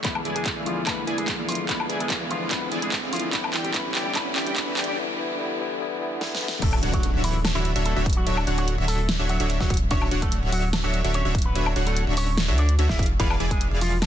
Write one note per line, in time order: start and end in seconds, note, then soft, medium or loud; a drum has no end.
0.00 0.63 D3 medium
0.00 0.63 F3 medium
0.00 riser medium
0.04 0.23 E1 medium
0.04 0.23 E3 medium
0.04 0.64 G#3 medium
0.04 0.20 B3 medium
0.04 0.64 B3 medium
0.04 0.23 E4 medium
0.04 0.65 E4 loud
0.04 0.23 G#4 medium
0.04 0.20 B4 medium
0.04 0.23 D5 medium
0.04 0.23 F5 medium
0.04 kick loud
0.04 clap soft
0.04 closed hi-hat medium
0.15 high woodblock medium
0.25 0.54 E1 medium
0.25 0.54 E3 medium
0.25 0.54 E4 medium
0.25 0.54 G#4 medium
0.25 0.54 D5 medium
0.25 0.54 G#5 medium
0.25 closed hi-hat medium
0.36 0.51 G#3 medium
0.36 0.51 G#4 medium
0.36 closed hi-hat medium
0.46 kick loud
0.46 clap medium
0.46 closed hi-hat medium
0.56 0.85 E1 loud
0.56 0.85 E3 medium
0.56 0.85 E4 medium
0.56 0.85 G#4 medium
0.56 0.85 D5 medium
0.56 0.85 F5 medium
0.64 0.84 D3 medium
0.64 0.85 F3 medium
0.64 0.82 F3 medium
0.64 0.85 G#3 medium
0.64 0.86 B3 medium
0.64 0.86 E4 medium
0.64 0.82 F4 medium
0.64 closed hi-hat medium
0.85 1.05 E1 loud
0.85 1.45 D3 medium
0.85 1.05 E3 medium
0.85 1.46 F3 medium
0.85 1.46 G#3 medium
0.85 1.03 B3 medium
0.85 1.47 B3 medium
0.85 1.05 E4 medium
0.85 1.05 G#4 medium
0.85 1.03 B4 medium
0.85 1.05 D5 medium
0.85 1.05 F5 medium
0.85 kick loud
0.85 clap medium
0.85 closed hi-hat medium
0.85 high woodblock medium
0.89 1.47 E4 loud
1.07 1.36 E1 medium
1.07 1.36 E3 medium
1.07 1.36 E4 medium
1.07 1.36 G#4 medium
1.07 1.36 D5 medium
1.07 1.36 G#5 medium
1.07 closed hi-hat medium
1.18 1.33 G#3 medium
1.18 1.33 G#4 medium
1.18 closed hi-hat medium
1.28 kick loud
1.28 clap medium
1.28 closed hi-hat medium
1.38 1.67 E1 loud
1.38 1.67 E3 medium
1.38 1.67 E4 medium
1.38 1.67 G#4 medium
1.38 1.67 D5 medium
1.38 1.67 F5 medium
1.46 1.66 D3 medium
1.46 1.67 F3 medium
1.46 1.64 F3 medium
1.46 1.67 G#3 medium
1.46 1.68 B3 medium
1.46 1.64 F4 medium
1.46 open hi-hat medium
1.50 1.68 E4 medium
1.50 closed hi-hat medium
1.55 closed hi-hat medium
1.67 1.88 E1 medium
1.67 2.27 D3 medium
1.67 1.87 E3 medium
1.67 2.28 F3 medium
1.67 2.28 G#3 medium
1.67 1.85 B3 medium
1.67 2.29 B3 medium
1.67 1.87 E4 medium
1.67 1.87 G#4 medium
1.67 1.85 B4 medium
1.67 1.87 D5 medium
1.67 1.87 F5 medium
1.67 kick medium
1.67 clap medium
1.67 closed hi-hat medium
1.71 2.29 E4 loud
1.80 high woodblock medium
1.89 2.19 E1 loud
1.89 2.18 E3 medium
1.89 2.18 E4 medium
1.89 2.18 G#4 medium
1.89 2.18 D5 medium
1.89 2.18 G#5 medium
1.89 closed hi-hat medium
2.00 2.16 G#3 medium
2.00 2.16 G#4 medium
2.00 closed hi-hat medium
2.10 kick loud
2.10 clap medium
2.10 closed hi-hat medium
2.21 2.49 E1 loud
2.21 2.50 E3 medium
2.21 2.50 E4 medium
2.21 2.50 G#4 medium
2.21 2.50 D5 medium
2.21 2.50 F5 medium
2.29 2.48 D3 medium
2.29 2.49 F3 medium
2.29 2.46 F3 medium
2.29 2.50 G#3 medium
2.29 2.50 B3 medium
2.29 2.46 F4 medium
2.29 closed hi-hat medium
2.33 2.51 E4 loud
2.49 2.70 E1 loud
2.49 3.10 D3 medium
2.49 2.69 E3 medium
2.49 3.10 F3 medium
2.49 3.11 G#3 medium
2.49 2.67 B3 medium
2.49 3.11 B3 medium
2.49 2.69 E4 medium
2.49 3.11 E4 loud
2.49 2.69 G#4 medium
2.49 2.67 B4 medium
2.49 kick loud
2.49 clap medium
2.49 closed hi-hat medium
2.72 3.01 E1 loud
2.72 3.00 E3 medium
2.72 3.00 E4 medium
2.72 3.00 G#4 medium
2.72 3.00 D5 medium
2.72 3.00 G#5 medium
2.72 closed hi-hat medium
2.82 2.98 G#3 medium
2.82 2.98 G#4 medium
2.82 closed hi-hat medium
2.92 kick loud
2.92 clap medium
2.92 closed hi-hat medium
3.03 3.31 E1 loud
3.03 3.32 E3 medium
3.03 3.32 E4 medium
3.03 3.32 G#4 medium
3.03 3.32 D5 medium
3.03 3.32 F5 medium
3.11 3.30 D3 medium
3.11 3.31 F3 medium
3.11 3.28 F3 medium
3.11 3.32 G#3 medium
3.11 3.32 B3 medium
3.11 3.28 F4 medium
3.11 open hi-hat medium
3.15 3.33 E4 medium
3.15 closed hi-hat medium
3.19 closed hi-hat medium
3.31 3.52 A1 loud
3.31 3.71 D3 loud
3.31 3.72 E3 medium
3.31 3.51 E3 medium
3.31 3.73 G3 medium
3.31 3.49 B3 medium
3.31 3.73 B3 medium
3.31 3.52 E4 medium
3.31 3.74 E4 loud
3.31 3.51 G4 medium
3.31 3.49 B4 loud
3.31 3.51 D5 medium
3.31 3.52 E5 medium
3.31 kick loud
3.31 clap medium
3.31 closed hi-hat medium
3.44 high woodblock medium
3.54 3.72 A1 loud
3.54 3.73 E3 medium
3.54 3.73 E4 medium
3.54 3.73 G4 medium
3.54 3.73 D5 medium
3.54 3.73 G5 medium
3.54 clap medium
3.54 closed hi-hat medium
3.64 3.73 G3 medium
3.64 3.73 G4 medium
3.64 closed hi-hat medium
3.72 3.93 A1 loud
3.72 4.12 D3 medium
3.72 4.13 E3 medium
3.72 3.93 E3 medium
3.72 4.14 G3 medium
3.72 3.90 B3 medium
3.72 4.15 B3 medium
3.72 3.93 E4 medium
3.72 4.15 E4 loud
3.72 3.90 B4 loud
3.72 3.93 E5 medium
3.72 kick loud
3.72 clap medium
3.72 closed hi-hat medium
3.95 4.13 A1 loud
3.95 4.14 E3 medium
3.95 4.14 E4 medium
3.95 4.14 G4 medium
3.95 4.14 D5 medium
3.95 4.14 G5 medium
3.95 clap medium
3.95 closed hi-hat medium
4.06 4.14 G3 medium
4.06 4.14 G4 medium
4.13 4.34 A1 loud
4.13 4.53 D3 loud
4.13 4.54 E3 medium
4.13 4.34 E3 medium
4.13 4.55 G3 medium
4.13 4.31 B3 medium
4.13 4.56 B3 medium
4.13 4.34 E4 medium
4.13 4.34 G4 medium
4.13 4.31 B4 loud
4.13 4.34 D5 medium
4.13 kick loud
4.13 clap medium
4.13 closed hi-hat medium
4.13 high woodblock medium
4.18 4.56 E4 loud
4.36 4.55 A1 loud
4.36 4.55 E3 medium
4.36 4.55 E4 medium
4.36 4.55 G4 medium
4.36 4.55 D5 medium
4.36 4.55 G5 medium
4.36 clap medium
4.36 closed hi-hat medium
4.47 4.55 G3 medium
4.47 4.55 G4 medium
4.47 closed hi-hat medium
4.54 4.75 A1 loud
4.54 4.94 D3 loud
4.54 4.95 E3 medium
4.54 4.75 E3 medium
4.54 4.96 G3 medium
4.54 4.72 B3 medium
4.54 4.97 B3 medium
4.54 4.75 E4 medium
4.54 4.75 G4 medium
4.54 4.72 B4 loud
4.54 4.75 D5 medium
4.54 kick loud
4.54 clap medium
4.54 closed hi-hat medium
4.58 4.97 E4 loud
4.77 4.96 A1 loud
4.77 4.96 E3 medium
4.77 4.96 E4 medium
4.77 4.96 G4 medium
4.77 4.96 D5 medium
4.77 4.96 G5 medium
4.77 clap medium
4.77 closed hi-hat medium
4.77 open hi-hat loud
4.84 4.96 G3 medium
4.84 4.96 G4 medium
4.84 closed hi-hat medium
4.96 5.15 D3 loud
4.96 5.16 E3 medium
4.96 5.17 G3 medium
4.96 5.17 B3 medium
4.96 5.18 E4 loud
5.16 5.36 D3 loud
5.16 5.37 E3 medium
5.16 5.37 G3 medium
5.16 5.38 B3 medium
5.16 5.38 E4 loud
5.37 5.56 D3 loud
5.37 5.57 E3 medium
5.37 5.58 G3 medium
5.37 5.58 B3 medium
5.37 5.59 E4 loud
5.57 5.77 D3 loud
5.57 5.78 E3 medium
5.57 5.78 G3 medium
5.57 5.79 B3 medium
5.62 5.79 E4 loud
5.78 5.97 D3 loud
5.78 5.98 E3 medium
5.78 5.99 G3 medium
5.78 5.99 B3 medium
5.82 6.00 E4 loud
5.98 6.18 D3 loud
5.98 6.19 E3 medium
5.98 6.19 G3 medium
5.98 6.20 B3 medium
6.03 6.20 E4 loud
6.19 6.38 D3 loud
6.19 6.39 E3 medium
6.19 6.40 G3 loud
6.19 6.41 B3 loud
6.19 snare medium
6.23 6.41 E4 loud
6.35 snare medium
6.39 6.59 D3 loud
6.39 6.60 E3 medium
6.39 6.60 G3 medium
6.39 6.61 B3 medium
6.39 6.61 E4 loud
6.48 snare loud
6.62 6.81 D1 loud
6.62 6.80 D3 medium
6.62 6.78 A3 medium
6.62 6.80 D4 medium
6.62 6.80 F#4 medium
6.62 6.78 A4 loud
6.62 6.80 C#5 medium
6.62 6.80 E5 medium
6.62 kick loud
6.62 closed hi-hat medium
6.62 crash loud
6.62 impact medium
6.73 high woodblock medium
6.83 7.12 D1 loud
6.83 7.11 D3 medium
6.83 7.11 D4 medium
6.83 7.11 F#4 medium
6.83 7.11 C#5 medium
6.83 7.11 F#5 medium
6.83 closed hi-hat medium
6.93 7.09 F#3 medium
6.93 7.09 F#4 medium
6.93 kick medium
6.93 closed hi-hat medium
7.03 closed hi-hat medium
7.14 7.53 D1 loud
7.14 7.52 D3 medium
7.14 7.52 D4 medium
7.14 7.52 F#4 medium
7.14 7.52 C#5 medium
7.14 7.52 E5 medium
7.24 7.40 E3 medium
7.24 7.40 E4 medium
7.24 open hi-hat medium
7.45 snare loud
7.45 closed hi-hat medium
7.45 high woodblock medium
7.55 7.74 D1 loud
7.55 7.74 D3 medium
7.55 7.70 E3 medium
7.55 7.74 D4 medium
7.55 7.70 E4 medium
7.55 7.74 F#4 medium
7.55 7.74 C#5 medium
7.55 7.74 E5 loud
7.65 closed hi-hat medium
7.76 7.94 D1 loud
7.76 7.94 D3 medium
7.76 7.94 D4 medium
7.76 7.94 F#4 medium
7.76 7.94 C#5 medium
7.76 7.94 E5 loud
7.76 closed hi-hat medium
7.85 8.01 A3 medium
7.85 8.01 A4 medium
7.85 closed hi-hat medium
7.96 8.25 D1 loud
7.96 8.07 D3 medium
7.96 8.07 D4 medium
7.96 8.07 F#4 medium
7.96 8.07 C#5 medium
7.96 8.07 E5 medium
8.06 kick loud
8.06 closed hi-hat soft
8.10 closed hi-hat medium
8.13 8.37 F#3 medium
8.13 closed hi-hat medium
8.17 8.37 F#4 medium
8.27 8.45 D1 loud
8.27 8.45 D3 medium
8.27 8.45 D4 medium
8.27 8.45 F#4 medium
8.27 8.45 C#5 medium
8.27 8.45 E5 medium
8.27 closed hi-hat medium
8.37 high woodblock medium
8.47 8.76 D1 loud
8.47 8.76 D3 medium
8.47 8.76 D4 medium
8.47 8.76 F#4 medium
8.47 8.76 C#5 medium
8.47 8.76 F#5 medium
8.47 closed hi-hat medium
8.58 8.73 F#3 medium
8.58 8.73 F#4 medium
8.58 closed hi-hat medium
8.68 closed hi-hat medium
8.78 9.17 D1 loud
8.78 9.17 D3 medium
8.78 9.17 D4 medium
8.78 9.17 F#4 medium
8.78 9.17 C#5 medium
8.78 9.17 E5 medium
8.88 9.09 A3 medium
8.88 9.09 A4 medium
8.88 open hi-hat medium
9.09 snare loud
9.09 closed hi-hat medium
9.19 9.38 D1 loud
9.19 9.38 D3 medium
9.19 9.38 D4 medium
9.19 9.38 F#4 medium
9.19 9.38 C#5 medium
9.19 9.38 E5 loud
9.29 9.45 F#3 medium
9.29 9.45 F#4 medium
9.29 closed hi-hat medium
9.40 9.58 D1 loud
9.40 9.58 D3 medium
9.40 9.58 D4 medium
9.40 9.58 F#4 medium
9.40 9.58 C#5 medium
9.40 9.58 E5 loud
9.40 closed hi-hat medium
9.50 closed hi-hat medium
9.60 9.89 D1 medium
9.60 9.71 D3 medium
9.60 9.76 F#3 medium
9.60 9.71 D4 medium
9.60 9.76 F#4 loud
9.60 9.71 F#4 medium
9.60 9.71 E5 medium
9.60 kick medium
9.60 snare soft
9.70 kick loud
9.70 closed hi-hat soft
9.74 closed hi-hat medium
9.77 closed hi-hat medium
9.91 10.10 D1 loud
9.91 10.09 D3 medium
9.91 10.07 C#4 medium
9.91 10.09 D4 medium
9.91 10.09 F#4 medium
9.91 10.09 C#5 medium
9.91 10.07 C#5 loud
9.91 10.09 E5 medium
9.91 kick loud
9.91 closed hi-hat medium
10.02 high woodblock medium
10.11 10.41 D1 loud
10.11 10.40 D3 medium
10.11 10.40 D4 medium
10.11 10.40 F#4 medium
10.11 10.40 C#5 medium
10.11 10.40 F#5 medium
10.11 closed hi-hat medium
10.22 10.37 A3 medium
10.22 10.37 A4 loud
10.22 kick medium
10.22 closed hi-hat medium
10.32 closed hi-hat medium
10.43 10.82 D1 loud
10.43 10.81 D3 medium
10.43 10.81 D4 medium
10.43 10.81 F#4 medium
10.43 10.81 C#5 medium
10.43 10.81 E5 medium
10.52 10.68 F#3 medium
10.52 10.68 F#4 medium
10.52 open hi-hat medium
10.73 snare loud
10.73 closed hi-hat medium
10.73 high woodblock medium
10.84 11.02 D1 loud
10.84 11.02 D3 medium
10.84 10.99 F#3 medium
10.84 11.02 D4 medium
10.84 10.99 F#4 loud
10.84 11.02 F#4 medium
10.84 11.02 C#5 medium
10.84 11.02 E5 loud
10.94 closed hi-hat medium
11.04 11.23 D1 loud
11.04 11.22 D3 medium
11.04 11.22 D4 medium
11.04 11.22 F#4 medium
11.04 11.22 C#5 medium
11.04 11.22 E5 loud
11.04 closed hi-hat medium
11.14 11.30 C#4 medium
11.14 11.30 C#5 loud
11.14 closed hi-hat medium
11.25 11.53 D1 loud
11.25 11.35 D3 medium
11.25 11.35 D4 medium
11.25 11.35 F#4 medium
11.25 11.35 C#5 medium
11.25 11.35 E5 medium
11.35 kick loud
11.35 closed hi-hat soft
11.38 closed hi-hat medium
11.42 11.66 B3 medium
11.42 11.66 B4 medium
11.42 closed hi-hat medium
11.55 11.74 D1 loud
11.55 11.74 D3 medium
11.55 11.74 D4 medium
11.55 11.74 F#4 medium
11.55 11.74 C#5 medium
11.55 11.74 E5 medium
11.55 closed hi-hat medium
11.66 high woodblock medium
11.76 12.05 D1 loud
11.76 12.05 D3 medium
11.76 12.05 D4 medium
11.76 12.05 F#4 medium
11.76 12.05 C#5 medium
11.76 12.05 F#5 medium
11.76 closed hi-hat medium
11.86 12.02 A3 medium
11.86 12.02 A4 loud
11.86 closed hi-hat medium
11.97 closed hi-hat medium
12.07 12.50 D1 loud
12.07 12.46 D3 medium
12.07 12.46 D4 medium
12.07 12.46 F#4 medium
12.07 12.46 C#5 medium
12.07 12.46 E5 medium
12.17 12.38 C#4 medium
12.17 12.38 C#5 medium
12.17 open hi-hat medium
12.38 snare loud
12.38 closed hi-hat medium
12.48 12.77 D2 loud
12.48 12.67 D3 medium
12.48 12.67 D4 medium
12.48 12.67 F#4 medium
12.48 12.67 C#5 medium
12.48 12.67 E5 loud
12.58 12.74 D4 medium
12.58 12.74 D5 medium
12.58 closed hi-hat medium
12.69 closed hi-hat medium
12.79 12.87 D2 loud
12.79 12.88 D3 medium
12.79 12.88 D4 medium
12.79 12.88 F#4 medium
12.79 12.88 C#5 medium
12.79 12.88 E5 loud
12.79 closed hi-hat medium
12.89 13.18 E1 loud
12.89 13.06 E3 medium
12.89 13.05 E4 medium
12.89 13.06 E4 medium
12.89 13.05 E5 medium
12.89 13.06 F5 loud
12.89 kick medium
12.89 snare soft
12.99 kick loud
12.99 closed hi-hat soft
13.03 closed hi-hat medium
13.06 closed hi-hat medium
13.20 13.38 E1 loud
13.20 13.38 E3 medium
13.20 13.35 B3 medium
13.20 13.38 E4 medium
13.20 13.38 G#4 medium
13.20 13.35 B4 loud
13.20 13.38 D5 medium
13.20 13.38 F5 medium
13.20 kick loud
13.20 closed hi-hat medium
13.30 high woodblock medium
13.40 13.69 E1 loud
13.40 13.69 E3 medium
13.40 13.69 E4 medium
13.40 13.69 G#4 medium
13.40 13.69 D5 medium
13.40 13.69 G#5 medium
13.40 closed hi-hat medium
13.51 13.66 G#3 medium
13.51 13.66 G#4 loud
13.51 kick medium
13.51 closed hi-hat medium
13.61 closed hi-hat medium
13.71 14.06 E1 loud
13.71 14.06 E3 medium
13.71 14.06 E4 medium
13.71 14.06 G#4 medium
13.71 14.06 D5 medium
13.71 14.06 F5 loud
13.81 13.97 F3 medium
13.81 13.97 F4 medium
13.81 open hi-hat medium
14.02 snare loud
14.02 closed hi-hat medium
14.02 high woodblock medium